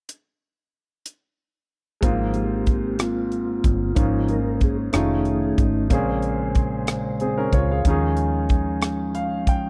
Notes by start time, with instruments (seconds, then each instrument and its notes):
0.09 closed hi-hat
1.06 closed hi-hat
2.01 fingered electric bass G#1, grand piano G#2 G#3 A#3 C4 F4, tonewheel organ F3 A#3 C4, kick, closed hi-hat
2.34 tonewheel organ A#3 C4 G4, closed hi-hat
2.66 kick, closed hi-hat
2.99 tonewheel organ A#3 C4 F4, cross-stick, closed hi-hat
3.32 closed hi-hat
3.64 fingered electric bass G1, kick, closed hi-hat
3.95 fingered electric bass G#1, grand piano G#2 A#3 C#4 D#4 F4, tonewheel organ F3 A#3 C#4 D#4 F4, kick, closed hi-hat
4.28 tonewheel organ A#4, closed hi-hat
4.55 tonewheel organ A#4
4.61 tonewheel organ G#4, kick, closed hi-hat
4.93 fingered electric bass F1, tonewheel organ D#3 A3 C#4 G#4, grand piano A3 C#4 D#4 F4, cross-stick, closed hi-hat
4.97 tonewheel organ D#4
5.25 closed hi-hat
5.58 fingered electric bass G#1, kick, closed hi-hat
5.90 fingered electric bass A#1, grand piano A#2 A#3 C4 C#4 G#4, tonewheel organ C#3 G#3 C5, kick, closed hi-hat
6.22 closed hi-hat
6.55 kick, closed hi-hat
6.87 cross-stick, closed hi-hat
7.20 grand piano C4 G#4, closed hi-hat
7.38 grand piano C#4 A#4
7.51 fingered electric bass C#2, tonewheel organ C#3 G#3 C4, grand piano F4 C#5, kick, closed hi-hat
7.71 grand piano G#4 F5
7.85 fingered electric bass D#2, grand piano D#3 C#4 D#4 F4, tonewheel organ F3 G#3 C#4, kick, closed hi-hat
7.90 grand piano G#4
8.17 closed hi-hat
8.49 kick, closed hi-hat
8.82 cross-stick, closed hi-hat
9.15 grand piano F5, closed hi-hat
9.47 grand piano G5, kick, closed hi-hat